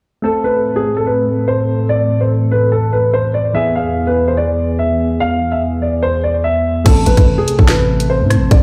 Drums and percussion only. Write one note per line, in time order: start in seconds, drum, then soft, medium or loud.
6.86 kick loud
6.86 closed hi-hat medium
6.86 crash loud
7.06 closed hi-hat medium
7.17 kick loud
7.17 closed hi-hat medium
7.48 closed hi-hat medium
7.59 kick medium
7.68 snare loud
7.68 closed hi-hat medium
8.00 closed hi-hat medium
8.30 cross-stick medium
8.30 closed hi-hat medium
8.51 kick loud
8.51 closed hi-hat medium